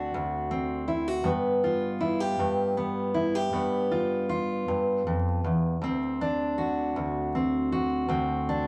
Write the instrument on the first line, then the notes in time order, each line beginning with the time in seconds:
steel-string acoustic guitar
Already playing: D2 C4 D4 F#4
0.14 D2
0.51 C4
0.88 E4
1.08 F#4
1.24 G2 B3
1.64 F4
2.00 E4
2.20 G4
2.39 G2
2.77 B3
3.14 E4
3.35 G4
3.53 G2 B3
3.91 F4
4.29 F4
4.68 G2
5.07 F2
5.44 E2
5.82 D2 C4
6.21 D4
6.58 F#4
6.96 D2
7.35 C4
7.72 F#4
8.09 D2 C4
8.49 D4